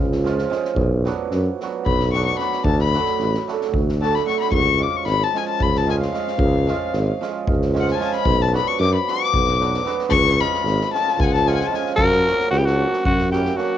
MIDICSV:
0, 0, Header, 1, 6, 480
1, 0, Start_track
1, 0, Tempo, 535236
1, 683, Time_signature, 7, 3, 24, 8
1, 7402, Tempo, 530035
1, 12405, End_track
2, 0, Start_track
2, 0, Title_t, "Violin"
2, 0, Program_c, 0, 40
2, 1669, Note_on_c, 0, 83, 81
2, 1896, Note_off_c, 0, 83, 0
2, 1912, Note_on_c, 0, 85, 86
2, 2017, Note_off_c, 0, 85, 0
2, 2022, Note_on_c, 0, 85, 82
2, 2129, Note_off_c, 0, 85, 0
2, 2147, Note_on_c, 0, 83, 76
2, 2356, Note_off_c, 0, 83, 0
2, 2383, Note_on_c, 0, 81, 84
2, 2495, Note_off_c, 0, 81, 0
2, 2517, Note_on_c, 0, 83, 99
2, 2963, Note_off_c, 0, 83, 0
2, 3602, Note_on_c, 0, 81, 74
2, 3719, Note_on_c, 0, 83, 69
2, 3732, Note_off_c, 0, 81, 0
2, 3827, Note_off_c, 0, 83, 0
2, 3839, Note_on_c, 0, 85, 71
2, 3937, Note_off_c, 0, 85, 0
2, 3948, Note_on_c, 0, 83, 85
2, 4049, Note_off_c, 0, 83, 0
2, 4063, Note_on_c, 0, 85, 101
2, 4325, Note_on_c, 0, 86, 85
2, 4338, Note_off_c, 0, 85, 0
2, 4449, Note_on_c, 0, 85, 81
2, 4463, Note_off_c, 0, 86, 0
2, 4549, Note_off_c, 0, 85, 0
2, 4555, Note_on_c, 0, 83, 92
2, 4693, Note_on_c, 0, 81, 82
2, 4707, Note_off_c, 0, 83, 0
2, 4812, Note_on_c, 0, 80, 86
2, 4826, Note_off_c, 0, 81, 0
2, 4917, Note_off_c, 0, 80, 0
2, 4922, Note_on_c, 0, 81, 81
2, 5042, Note_on_c, 0, 83, 79
2, 5055, Note_off_c, 0, 81, 0
2, 5177, Note_on_c, 0, 81, 86
2, 5191, Note_off_c, 0, 83, 0
2, 5287, Note_off_c, 0, 81, 0
2, 5294, Note_on_c, 0, 80, 75
2, 5340, Note_off_c, 0, 80, 0
2, 5402, Note_on_c, 0, 77, 76
2, 6560, Note_off_c, 0, 77, 0
2, 6991, Note_on_c, 0, 78, 65
2, 7078, Note_off_c, 0, 78, 0
2, 7101, Note_on_c, 0, 80, 68
2, 7113, Note_on_c, 0, 81, 57
2, 7127, Note_off_c, 0, 80, 0
2, 7161, Note_on_c, 0, 80, 67
2, 7175, Note_off_c, 0, 81, 0
2, 7207, Note_on_c, 0, 81, 67
2, 7220, Note_off_c, 0, 80, 0
2, 7306, Note_off_c, 0, 81, 0
2, 7309, Note_on_c, 0, 83, 99
2, 7549, Note_on_c, 0, 81, 95
2, 7562, Note_off_c, 0, 83, 0
2, 7670, Note_off_c, 0, 81, 0
2, 7684, Note_on_c, 0, 83, 80
2, 7782, Note_on_c, 0, 85, 91
2, 7796, Note_off_c, 0, 83, 0
2, 7897, Note_off_c, 0, 85, 0
2, 7907, Note_on_c, 0, 86, 98
2, 8021, Note_off_c, 0, 86, 0
2, 8034, Note_on_c, 0, 83, 80
2, 8158, Note_on_c, 0, 86, 101
2, 8171, Note_off_c, 0, 83, 0
2, 8864, Note_off_c, 0, 86, 0
2, 9077, Note_on_c, 0, 85, 121
2, 9348, Note_on_c, 0, 83, 99
2, 9362, Note_off_c, 0, 85, 0
2, 9827, Note_off_c, 0, 83, 0
2, 9832, Note_on_c, 0, 81, 90
2, 10050, Note_off_c, 0, 81, 0
2, 10078, Note_on_c, 0, 80, 80
2, 10099, Note_on_c, 0, 78, 60
2, 10112, Note_off_c, 0, 80, 0
2, 10140, Note_on_c, 0, 80, 88
2, 10153, Note_off_c, 0, 78, 0
2, 10197, Note_off_c, 0, 80, 0
2, 10203, Note_on_c, 0, 81, 93
2, 10318, Note_on_c, 0, 80, 68
2, 10332, Note_off_c, 0, 81, 0
2, 10332, Note_on_c, 0, 78, 62
2, 10346, Note_off_c, 0, 80, 0
2, 10380, Note_on_c, 0, 80, 77
2, 10394, Note_off_c, 0, 78, 0
2, 10433, Note_off_c, 0, 80, 0
2, 10450, Note_on_c, 0, 80, 79
2, 10495, Note_on_c, 0, 81, 62
2, 10508, Note_off_c, 0, 80, 0
2, 10565, Note_on_c, 0, 80, 67
2, 10579, Note_off_c, 0, 81, 0
2, 10761, Note_off_c, 0, 80, 0
2, 10766, Note_on_c, 0, 66, 93
2, 11222, Note_off_c, 0, 66, 0
2, 11254, Note_on_c, 0, 61, 69
2, 11337, Note_on_c, 0, 64, 60
2, 11351, Note_off_c, 0, 61, 0
2, 11401, Note_on_c, 0, 62, 64
2, 11414, Note_off_c, 0, 64, 0
2, 11741, Note_off_c, 0, 62, 0
2, 11747, Note_on_c, 0, 61, 71
2, 11974, Note_off_c, 0, 61, 0
2, 11990, Note_on_c, 0, 64, 61
2, 12223, Note_on_c, 0, 62, 61
2, 12237, Note_off_c, 0, 64, 0
2, 12405, Note_off_c, 0, 62, 0
2, 12405, End_track
3, 0, Start_track
3, 0, Title_t, "Alto saxophone"
3, 0, Program_c, 1, 65
3, 10758, Note_on_c, 1, 70, 119
3, 11218, Note_off_c, 1, 70, 0
3, 11251, Note_on_c, 1, 66, 108
3, 11316, Note_on_c, 1, 67, 79
3, 11330, Note_off_c, 1, 66, 0
3, 11384, Note_on_c, 1, 66, 94
3, 11398, Note_off_c, 1, 67, 0
3, 11741, Note_off_c, 1, 66, 0
3, 11748, Note_on_c, 1, 66, 97
3, 11975, Note_off_c, 1, 66, 0
3, 11986, Note_on_c, 1, 67, 75
3, 12209, Note_on_c, 1, 66, 89
3, 12223, Note_off_c, 1, 67, 0
3, 12405, Note_off_c, 1, 66, 0
3, 12405, End_track
4, 0, Start_track
4, 0, Title_t, "Hammered dulcimer"
4, 0, Program_c, 2, 15
4, 0, Note_on_c, 2, 53, 65
4, 0, Note_on_c, 2, 56, 54
4, 206, Note_off_c, 2, 53, 0
4, 214, Note_off_c, 2, 56, 0
4, 217, Note_on_c, 2, 53, 84
4, 225, Note_on_c, 2, 56, 63
4, 226, Note_on_c, 2, 61, 71
4, 232, Note_on_c, 2, 65, 90
4, 395, Note_off_c, 2, 61, 0
4, 398, Note_off_c, 2, 65, 0
4, 437, Note_off_c, 2, 53, 0
4, 441, Note_off_c, 2, 56, 0
4, 447, Note_on_c, 2, 53, 84
4, 452, Note_on_c, 2, 56, 76
4, 455, Note_on_c, 2, 61, 71
4, 459, Note_on_c, 2, 65, 81
4, 624, Note_off_c, 2, 61, 0
4, 626, Note_off_c, 2, 65, 0
4, 728, Note_off_c, 2, 53, 0
4, 728, Note_off_c, 2, 56, 0
4, 941, Note_on_c, 2, 54, 80
4, 946, Note_on_c, 2, 59, 73
4, 955, Note_on_c, 2, 62, 71
4, 959, Note_on_c, 2, 66, 72
4, 1115, Note_off_c, 2, 59, 0
4, 1120, Note_off_c, 2, 62, 0
4, 1121, Note_off_c, 2, 66, 0
4, 1433, Note_off_c, 2, 54, 0
4, 1443, Note_on_c, 2, 54, 72
4, 1452, Note_on_c, 2, 59, 61
4, 1453, Note_on_c, 2, 62, 51
4, 1463, Note_on_c, 2, 66, 75
4, 1613, Note_off_c, 2, 59, 0
4, 1614, Note_off_c, 2, 62, 0
4, 1619, Note_off_c, 2, 66, 0
4, 1910, Note_off_c, 2, 54, 0
4, 1920, Note_on_c, 2, 54, 64
4, 1922, Note_on_c, 2, 59, 58
4, 1931, Note_on_c, 2, 62, 64
4, 1934, Note_on_c, 2, 66, 77
4, 2085, Note_off_c, 2, 59, 0
4, 2090, Note_off_c, 2, 62, 0
4, 2091, Note_off_c, 2, 66, 0
4, 2131, Note_off_c, 2, 54, 0
4, 2141, Note_on_c, 2, 54, 69
4, 2143, Note_on_c, 2, 59, 64
4, 2150, Note_on_c, 2, 62, 56
4, 2159, Note_on_c, 2, 66, 76
4, 2310, Note_off_c, 2, 59, 0
4, 2313, Note_off_c, 2, 62, 0
4, 2318, Note_off_c, 2, 66, 0
4, 2412, Note_off_c, 2, 54, 0
4, 2630, Note_on_c, 2, 54, 66
4, 2638, Note_on_c, 2, 57, 52
4, 2643, Note_on_c, 2, 62, 56
4, 2643, Note_on_c, 2, 66, 78
4, 2803, Note_off_c, 2, 57, 0
4, 2805, Note_off_c, 2, 66, 0
4, 2806, Note_off_c, 2, 62, 0
4, 3106, Note_off_c, 2, 54, 0
4, 3117, Note_on_c, 2, 54, 72
4, 3122, Note_on_c, 2, 57, 70
4, 3125, Note_on_c, 2, 62, 68
4, 3133, Note_on_c, 2, 66, 69
4, 3290, Note_off_c, 2, 57, 0
4, 3291, Note_off_c, 2, 62, 0
4, 3295, Note_off_c, 2, 66, 0
4, 3583, Note_off_c, 2, 54, 0
4, 3593, Note_on_c, 2, 54, 72
4, 3595, Note_on_c, 2, 57, 63
4, 3601, Note_on_c, 2, 62, 56
4, 3607, Note_on_c, 2, 66, 60
4, 3763, Note_off_c, 2, 57, 0
4, 3766, Note_off_c, 2, 62, 0
4, 3769, Note_off_c, 2, 66, 0
4, 3804, Note_off_c, 2, 54, 0
4, 3814, Note_on_c, 2, 54, 64
4, 3822, Note_on_c, 2, 57, 56
4, 3822, Note_on_c, 2, 62, 56
4, 3828, Note_on_c, 2, 66, 67
4, 3990, Note_off_c, 2, 62, 0
4, 3991, Note_off_c, 2, 57, 0
4, 3993, Note_off_c, 2, 66, 0
4, 4095, Note_off_c, 2, 54, 0
4, 4293, Note_on_c, 2, 53, 67
4, 4297, Note_on_c, 2, 56, 61
4, 4308, Note_on_c, 2, 61, 66
4, 4311, Note_on_c, 2, 65, 71
4, 4479, Note_off_c, 2, 61, 0
4, 4480, Note_off_c, 2, 65, 0
4, 4775, Note_off_c, 2, 53, 0
4, 4780, Note_off_c, 2, 56, 0
4, 4786, Note_on_c, 2, 53, 56
4, 4791, Note_on_c, 2, 56, 52
4, 4796, Note_on_c, 2, 61, 54
4, 4804, Note_on_c, 2, 65, 54
4, 4967, Note_off_c, 2, 61, 0
4, 4971, Note_off_c, 2, 65, 0
4, 5249, Note_off_c, 2, 53, 0
4, 5255, Note_off_c, 2, 56, 0
4, 5260, Note_on_c, 2, 53, 61
4, 5265, Note_on_c, 2, 56, 67
4, 5272, Note_on_c, 2, 65, 70
4, 5273, Note_on_c, 2, 61, 63
4, 5441, Note_off_c, 2, 65, 0
4, 5442, Note_off_c, 2, 61, 0
4, 5480, Note_off_c, 2, 53, 0
4, 5491, Note_on_c, 2, 53, 64
4, 5493, Note_off_c, 2, 56, 0
4, 5503, Note_on_c, 2, 56, 60
4, 5511, Note_on_c, 2, 61, 53
4, 5512, Note_on_c, 2, 65, 74
4, 5675, Note_off_c, 2, 61, 0
4, 5675, Note_off_c, 2, 65, 0
4, 5970, Note_off_c, 2, 53, 0
4, 5975, Note_off_c, 2, 56, 0
4, 5981, Note_on_c, 2, 53, 89
4, 5986, Note_on_c, 2, 56, 72
4, 5993, Note_on_c, 2, 61, 70
4, 6000, Note_on_c, 2, 65, 87
4, 6161, Note_off_c, 2, 61, 0
4, 6164, Note_off_c, 2, 65, 0
4, 6453, Note_off_c, 2, 53, 0
4, 6459, Note_off_c, 2, 56, 0
4, 6464, Note_on_c, 2, 53, 80
4, 6470, Note_on_c, 2, 56, 63
4, 6474, Note_on_c, 2, 61, 60
4, 6478, Note_on_c, 2, 65, 73
4, 6645, Note_off_c, 2, 61, 0
4, 6647, Note_off_c, 2, 65, 0
4, 6927, Note_off_c, 2, 53, 0
4, 6927, Note_off_c, 2, 56, 0
4, 6937, Note_on_c, 2, 53, 67
4, 6938, Note_on_c, 2, 56, 69
4, 6945, Note_on_c, 2, 61, 72
4, 6949, Note_on_c, 2, 65, 74
4, 7115, Note_off_c, 2, 61, 0
4, 7117, Note_off_c, 2, 65, 0
4, 7148, Note_off_c, 2, 53, 0
4, 7158, Note_on_c, 2, 53, 71
4, 7159, Note_off_c, 2, 56, 0
4, 7170, Note_on_c, 2, 56, 64
4, 7174, Note_on_c, 2, 61, 61
4, 7175, Note_on_c, 2, 65, 66
4, 7344, Note_off_c, 2, 61, 0
4, 7344, Note_off_c, 2, 65, 0
4, 7450, Note_off_c, 2, 53, 0
4, 7450, Note_off_c, 2, 56, 0
4, 7646, Note_on_c, 2, 54, 61
4, 7647, Note_on_c, 2, 59, 67
4, 7653, Note_on_c, 2, 62, 63
4, 7660, Note_on_c, 2, 66, 80
4, 7827, Note_off_c, 2, 59, 0
4, 7830, Note_off_c, 2, 62, 0
4, 7834, Note_off_c, 2, 66, 0
4, 8136, Note_off_c, 2, 54, 0
4, 8147, Note_on_c, 2, 54, 63
4, 8154, Note_on_c, 2, 59, 53
4, 8160, Note_on_c, 2, 62, 50
4, 8163, Note_on_c, 2, 66, 68
4, 8326, Note_off_c, 2, 59, 0
4, 8329, Note_off_c, 2, 62, 0
4, 8330, Note_off_c, 2, 66, 0
4, 8614, Note_off_c, 2, 54, 0
4, 8624, Note_on_c, 2, 54, 65
4, 8627, Note_on_c, 2, 59, 57
4, 8630, Note_on_c, 2, 62, 57
4, 8635, Note_on_c, 2, 66, 73
4, 8799, Note_off_c, 2, 59, 0
4, 8801, Note_off_c, 2, 62, 0
4, 8803, Note_off_c, 2, 66, 0
4, 8836, Note_off_c, 2, 54, 0
4, 8847, Note_on_c, 2, 54, 84
4, 8856, Note_on_c, 2, 59, 77
4, 8857, Note_on_c, 2, 62, 67
4, 8869, Note_on_c, 2, 66, 91
4, 9028, Note_off_c, 2, 59, 0
4, 9029, Note_off_c, 2, 62, 0
4, 9035, Note_off_c, 2, 66, 0
4, 9136, Note_off_c, 2, 54, 0
4, 9340, Note_on_c, 2, 53, 61
4, 9345, Note_on_c, 2, 56, 65
4, 9351, Note_on_c, 2, 61, 64
4, 9354, Note_on_c, 2, 65, 84
4, 9521, Note_off_c, 2, 61, 0
4, 9523, Note_off_c, 2, 65, 0
4, 9819, Note_off_c, 2, 53, 0
4, 9826, Note_off_c, 2, 56, 0
4, 9830, Note_on_c, 2, 53, 66
4, 9837, Note_on_c, 2, 56, 49
4, 9838, Note_on_c, 2, 61, 57
4, 9843, Note_on_c, 2, 65, 65
4, 10009, Note_off_c, 2, 61, 0
4, 10012, Note_off_c, 2, 65, 0
4, 10296, Note_off_c, 2, 53, 0
4, 10298, Note_off_c, 2, 56, 0
4, 10305, Note_on_c, 2, 53, 65
4, 10309, Note_on_c, 2, 56, 61
4, 10312, Note_on_c, 2, 61, 61
4, 10320, Note_on_c, 2, 65, 77
4, 10481, Note_off_c, 2, 61, 0
4, 10486, Note_off_c, 2, 65, 0
4, 10516, Note_off_c, 2, 53, 0
4, 10522, Note_off_c, 2, 56, 0
4, 10527, Note_on_c, 2, 53, 70
4, 10533, Note_on_c, 2, 56, 59
4, 10537, Note_on_c, 2, 61, 61
4, 10543, Note_on_c, 2, 65, 75
4, 10709, Note_off_c, 2, 61, 0
4, 10712, Note_off_c, 2, 65, 0
4, 10817, Note_off_c, 2, 53, 0
4, 10817, Note_off_c, 2, 56, 0
4, 11024, Note_on_c, 2, 54, 63
4, 11034, Note_on_c, 2, 58, 52
4, 11038, Note_on_c, 2, 61, 54
4, 11050, Note_on_c, 2, 66, 63
4, 11202, Note_off_c, 2, 58, 0
4, 11204, Note_off_c, 2, 61, 0
4, 11210, Note_off_c, 2, 66, 0
4, 11503, Note_off_c, 2, 54, 0
4, 11514, Note_on_c, 2, 54, 50
4, 11519, Note_on_c, 2, 58, 51
4, 11523, Note_on_c, 2, 61, 45
4, 11529, Note_on_c, 2, 66, 56
4, 11688, Note_off_c, 2, 58, 0
4, 11690, Note_off_c, 2, 61, 0
4, 11693, Note_off_c, 2, 66, 0
4, 11977, Note_off_c, 2, 54, 0
4, 11988, Note_on_c, 2, 54, 67
4, 11992, Note_on_c, 2, 58, 53
4, 11995, Note_on_c, 2, 61, 68
4, 12005, Note_on_c, 2, 66, 69
4, 12160, Note_off_c, 2, 58, 0
4, 12161, Note_off_c, 2, 61, 0
4, 12166, Note_off_c, 2, 66, 0
4, 12201, Note_off_c, 2, 54, 0
4, 12212, Note_on_c, 2, 54, 67
4, 12221, Note_on_c, 2, 58, 60
4, 12223, Note_on_c, 2, 61, 53
4, 12230, Note_on_c, 2, 66, 79
4, 12388, Note_off_c, 2, 58, 0
4, 12389, Note_off_c, 2, 61, 0
4, 12392, Note_off_c, 2, 66, 0
4, 12405, Note_off_c, 2, 54, 0
4, 12405, End_track
5, 0, Start_track
5, 0, Title_t, "Tuba"
5, 0, Program_c, 3, 58
5, 0, Note_on_c, 3, 37, 79
5, 403, Note_off_c, 3, 37, 0
5, 675, Note_on_c, 3, 35, 98
5, 972, Note_off_c, 3, 35, 0
5, 1177, Note_on_c, 3, 42, 90
5, 1330, Note_off_c, 3, 42, 0
5, 1671, Note_on_c, 3, 35, 96
5, 2091, Note_off_c, 3, 35, 0
5, 2372, Note_on_c, 3, 38, 109
5, 2665, Note_off_c, 3, 38, 0
5, 2865, Note_on_c, 3, 33, 91
5, 3017, Note_off_c, 3, 33, 0
5, 3347, Note_on_c, 3, 38, 75
5, 3769, Note_off_c, 3, 38, 0
5, 4050, Note_on_c, 3, 37, 94
5, 4343, Note_off_c, 3, 37, 0
5, 4538, Note_on_c, 3, 32, 90
5, 4692, Note_off_c, 3, 32, 0
5, 5022, Note_on_c, 3, 37, 84
5, 5445, Note_off_c, 3, 37, 0
5, 5728, Note_on_c, 3, 37, 110
5, 6021, Note_off_c, 3, 37, 0
5, 6216, Note_on_c, 3, 32, 98
5, 6370, Note_off_c, 3, 32, 0
5, 6708, Note_on_c, 3, 37, 87
5, 7127, Note_off_c, 3, 37, 0
5, 7402, Note_on_c, 3, 35, 110
5, 7698, Note_off_c, 3, 35, 0
5, 7889, Note_on_c, 3, 42, 113
5, 8046, Note_off_c, 3, 42, 0
5, 8379, Note_on_c, 3, 35, 81
5, 8804, Note_off_c, 3, 35, 0
5, 9074, Note_on_c, 3, 37, 117
5, 9373, Note_off_c, 3, 37, 0
5, 9560, Note_on_c, 3, 32, 100
5, 9720, Note_off_c, 3, 32, 0
5, 10057, Note_on_c, 3, 37, 99
5, 10482, Note_off_c, 3, 37, 0
5, 10766, Note_on_c, 3, 42, 89
5, 11060, Note_off_c, 3, 42, 0
5, 11258, Note_on_c, 3, 37, 103
5, 11551, Note_off_c, 3, 37, 0
5, 11749, Note_on_c, 3, 42, 87
5, 12168, Note_off_c, 3, 42, 0
5, 12405, End_track
6, 0, Start_track
6, 0, Title_t, "Drums"
6, 105, Note_on_c, 9, 38, 24
6, 195, Note_off_c, 9, 38, 0
6, 228, Note_on_c, 9, 38, 26
6, 317, Note_off_c, 9, 38, 0
6, 344, Note_on_c, 9, 38, 27
6, 433, Note_off_c, 9, 38, 0
6, 464, Note_on_c, 9, 38, 28
6, 553, Note_off_c, 9, 38, 0
6, 579, Note_on_c, 9, 38, 23
6, 669, Note_off_c, 9, 38, 0
6, 686, Note_on_c, 9, 36, 83
6, 776, Note_off_c, 9, 36, 0
6, 944, Note_on_c, 9, 38, 24
6, 1033, Note_off_c, 9, 38, 0
6, 1175, Note_on_c, 9, 38, 26
6, 1264, Note_off_c, 9, 38, 0
6, 1439, Note_on_c, 9, 38, 23
6, 1529, Note_off_c, 9, 38, 0
6, 1671, Note_on_c, 9, 36, 80
6, 1760, Note_off_c, 9, 36, 0
6, 1793, Note_on_c, 9, 38, 24
6, 1882, Note_off_c, 9, 38, 0
6, 1916, Note_on_c, 9, 38, 29
6, 2006, Note_off_c, 9, 38, 0
6, 2025, Note_on_c, 9, 38, 25
6, 2115, Note_off_c, 9, 38, 0
6, 2138, Note_on_c, 9, 38, 28
6, 2227, Note_off_c, 9, 38, 0
6, 2260, Note_on_c, 9, 38, 23
6, 2350, Note_off_c, 9, 38, 0
6, 2372, Note_on_c, 9, 36, 87
6, 2461, Note_off_c, 9, 36, 0
6, 2497, Note_on_c, 9, 38, 25
6, 2586, Note_off_c, 9, 38, 0
6, 2630, Note_on_c, 9, 38, 29
6, 2720, Note_off_c, 9, 38, 0
6, 2743, Note_on_c, 9, 38, 24
6, 2833, Note_off_c, 9, 38, 0
6, 2866, Note_on_c, 9, 38, 22
6, 2956, Note_off_c, 9, 38, 0
6, 2997, Note_on_c, 9, 38, 28
6, 3087, Note_off_c, 9, 38, 0
6, 3124, Note_on_c, 9, 38, 25
6, 3214, Note_off_c, 9, 38, 0
6, 3239, Note_on_c, 9, 38, 25
6, 3328, Note_off_c, 9, 38, 0
6, 3352, Note_on_c, 9, 36, 84
6, 3442, Note_off_c, 9, 36, 0
6, 3486, Note_on_c, 9, 38, 24
6, 3576, Note_off_c, 9, 38, 0
6, 3609, Note_on_c, 9, 38, 24
6, 3698, Note_off_c, 9, 38, 0
6, 3724, Note_on_c, 9, 38, 22
6, 3814, Note_off_c, 9, 38, 0
6, 3835, Note_on_c, 9, 38, 25
6, 3925, Note_off_c, 9, 38, 0
6, 3951, Note_on_c, 9, 38, 23
6, 4041, Note_off_c, 9, 38, 0
6, 4052, Note_on_c, 9, 36, 74
6, 4142, Note_off_c, 9, 36, 0
6, 4314, Note_on_c, 9, 38, 20
6, 4404, Note_off_c, 9, 38, 0
6, 4544, Note_on_c, 9, 38, 24
6, 4633, Note_off_c, 9, 38, 0
6, 4797, Note_on_c, 9, 38, 25
6, 4886, Note_off_c, 9, 38, 0
6, 5025, Note_on_c, 9, 36, 76
6, 5115, Note_off_c, 9, 36, 0
6, 5154, Note_on_c, 9, 38, 24
6, 5244, Note_off_c, 9, 38, 0
6, 5276, Note_on_c, 9, 38, 24
6, 5366, Note_off_c, 9, 38, 0
6, 5397, Note_on_c, 9, 38, 30
6, 5486, Note_off_c, 9, 38, 0
6, 5503, Note_on_c, 9, 38, 33
6, 5593, Note_off_c, 9, 38, 0
6, 5627, Note_on_c, 9, 38, 30
6, 5716, Note_off_c, 9, 38, 0
6, 5729, Note_on_c, 9, 36, 96
6, 5819, Note_off_c, 9, 36, 0
6, 5987, Note_on_c, 9, 38, 24
6, 6077, Note_off_c, 9, 38, 0
6, 6214, Note_on_c, 9, 38, 27
6, 6303, Note_off_c, 9, 38, 0
6, 6473, Note_on_c, 9, 38, 29
6, 6563, Note_off_c, 9, 38, 0
6, 6703, Note_on_c, 9, 36, 98
6, 6793, Note_off_c, 9, 36, 0
6, 6829, Note_on_c, 9, 38, 23
6, 6918, Note_off_c, 9, 38, 0
6, 6951, Note_on_c, 9, 38, 25
6, 7041, Note_off_c, 9, 38, 0
6, 7063, Note_on_c, 9, 38, 28
6, 7153, Note_off_c, 9, 38, 0
6, 7177, Note_on_c, 9, 38, 34
6, 7267, Note_off_c, 9, 38, 0
6, 7285, Note_on_c, 9, 38, 28
6, 7375, Note_off_c, 9, 38, 0
6, 7402, Note_on_c, 9, 36, 86
6, 7493, Note_off_c, 9, 36, 0
6, 7663, Note_on_c, 9, 38, 25
6, 7754, Note_off_c, 9, 38, 0
6, 7900, Note_on_c, 9, 38, 26
6, 7990, Note_off_c, 9, 38, 0
6, 8152, Note_on_c, 9, 38, 28
6, 8243, Note_off_c, 9, 38, 0
6, 8382, Note_on_c, 9, 36, 81
6, 8473, Note_off_c, 9, 36, 0
6, 8509, Note_on_c, 9, 38, 26
6, 8599, Note_off_c, 9, 38, 0
6, 8629, Note_on_c, 9, 38, 24
6, 8719, Note_off_c, 9, 38, 0
6, 8745, Note_on_c, 9, 38, 30
6, 8836, Note_off_c, 9, 38, 0
6, 8854, Note_on_c, 9, 38, 28
6, 8944, Note_off_c, 9, 38, 0
6, 8974, Note_on_c, 9, 38, 22
6, 9065, Note_off_c, 9, 38, 0
6, 9088, Note_on_c, 9, 36, 74
6, 9178, Note_off_c, 9, 36, 0
6, 9220, Note_on_c, 9, 38, 23
6, 9311, Note_off_c, 9, 38, 0
6, 9349, Note_on_c, 9, 38, 25
6, 9440, Note_off_c, 9, 38, 0
6, 9468, Note_on_c, 9, 38, 29
6, 9558, Note_off_c, 9, 38, 0
6, 9578, Note_on_c, 9, 38, 26
6, 9669, Note_off_c, 9, 38, 0
6, 9715, Note_on_c, 9, 38, 24
6, 9806, Note_off_c, 9, 38, 0
6, 9840, Note_on_c, 9, 38, 28
6, 9931, Note_off_c, 9, 38, 0
6, 9958, Note_on_c, 9, 38, 25
6, 10048, Note_off_c, 9, 38, 0
6, 10069, Note_on_c, 9, 36, 91
6, 10159, Note_off_c, 9, 36, 0
6, 10198, Note_on_c, 9, 38, 27
6, 10289, Note_off_c, 9, 38, 0
6, 10319, Note_on_c, 9, 38, 25
6, 10409, Note_off_c, 9, 38, 0
6, 10436, Note_on_c, 9, 38, 26
6, 10527, Note_off_c, 9, 38, 0
6, 10556, Note_on_c, 9, 38, 35
6, 10647, Note_off_c, 9, 38, 0
6, 10668, Note_on_c, 9, 38, 22
6, 10759, Note_off_c, 9, 38, 0
6, 10775, Note_on_c, 9, 36, 80
6, 10866, Note_off_c, 9, 36, 0
6, 10904, Note_on_c, 9, 38, 29
6, 10995, Note_off_c, 9, 38, 0
6, 11039, Note_on_c, 9, 38, 30
6, 11129, Note_off_c, 9, 38, 0
6, 11151, Note_on_c, 9, 38, 30
6, 11241, Note_off_c, 9, 38, 0
6, 11270, Note_on_c, 9, 38, 24
6, 11360, Note_off_c, 9, 38, 0
6, 11397, Note_on_c, 9, 38, 28
6, 11488, Note_off_c, 9, 38, 0
6, 11638, Note_on_c, 9, 38, 23
6, 11728, Note_off_c, 9, 38, 0
6, 11748, Note_on_c, 9, 36, 88
6, 11839, Note_off_c, 9, 36, 0
6, 11865, Note_on_c, 9, 38, 22
6, 11955, Note_off_c, 9, 38, 0
6, 11995, Note_on_c, 9, 38, 29
6, 12085, Note_off_c, 9, 38, 0
6, 12106, Note_on_c, 9, 38, 24
6, 12197, Note_off_c, 9, 38, 0
6, 12223, Note_on_c, 9, 38, 30
6, 12313, Note_off_c, 9, 38, 0
6, 12405, End_track
0, 0, End_of_file